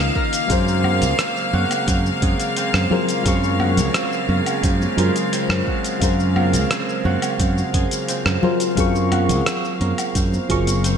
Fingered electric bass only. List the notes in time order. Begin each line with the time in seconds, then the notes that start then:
0.50 F#2
1.02 C#2
1.53 F#2
1.88 F#2
2.22 F#2
2.74 F#2
3.26 F#2
3.77 C#2
4.29 F#2
4.63 F#2
4.98 F#2
5.49 F#2
6.01 F#2
6.53 C#2
7.05 F#2
7.39 F#2
7.74 F#2
8.26 F#2
8.77 F#2
9.29 C#2
9.81 F#2
10.15 F#2
10.50 F#1